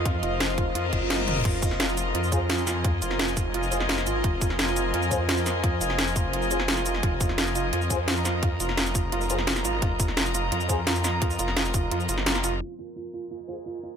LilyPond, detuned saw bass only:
\new Staff \with { instrumentName = "Detuned saw bass" } { \clef bass \time 4/4 \key f \minor \tempo 4 = 172 f,8 f,,4. f,8 ges,,4 f,,8 | f,,8 f,,4. f,2~ | f,8 f,,4. f,,8 f,,4 aes,,8 | f,,8 f,,4. f,2~ |
f,8 f,,4. f,,2 | f,,8 f,,4. f,2~ | f,8 f,,4. f,,8 f,,4 aes,,8 | f,,8 f,,4. f,2~ |
f,8 f,,4. f,8 ges,,4 f,,8 | r1 | }